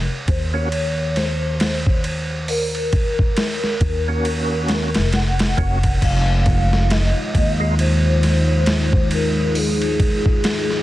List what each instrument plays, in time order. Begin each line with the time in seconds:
0.28 upright bass D#2, soft synth lead C5, kick, ride
0.53 tonewheel organ A#3 C#4 F#4, soft synth lead C#5
0.72 ride
1.16 soft synth lead C5, snare, ride
1.60 snare, ride
1.87 kick
2.04 ride
2.48 soft synth lead A#4, open hi-hat
2.75 ride
2.93 kick, ride
3.19 kick
3.37 snare, ride
3.64 snare
3.81 upright bass D#2, kick, ride
4.08 tonewheel organ A#3 C#4 F#4
4.25 ride
4.68 snare, ride
4.94 upright bass F1, snare, ride
5.13 soft synth lead F#5, snare, ride
5.39 snare, ride
5.57 upright bass F1, tonewheel organ A#3 C#4 F#4, kick, ride
5.83 kick, ride
6.02 upright bass F1, string machine G#3 D#4 F4 D#5, soft synth lead F5, kick, crash, ride
6.46 kick, ride
6.73 snare
6.90 soft synth lead D#5, snare, ride
7.35 upright bass D#2, kick, ride
7.60 tonewheel organ G#3 D#4 F4
7.79 soft synth lead C5, ride
8.23 snare, ride
8.66 snare, ride
8.93 kick
9.11 soft synth lead A#4, ride
9.55 soft synth lead G#4, open hi-hat
9.81 ride
10.00 kick, ride
10.26 kick
10.44 snare, ride
10.71 snare